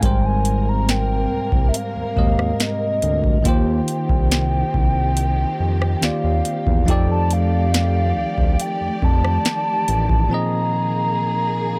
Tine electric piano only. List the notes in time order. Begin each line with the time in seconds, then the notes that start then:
Already playing: G#5
0.00 G#2 G3 G#3
0.04 A#4 C5
2.15 G#2 G#3 G4 A#4 D#5
3.43 D#3 A#3 F4
3.47 G4 C5
6.01 D#3 A#3 F4 G4 D5
6.85 F3 C4 D#4 G4
6.90 A4 D5
10.28 A#2 F3 C4
10.33 G#4 D#5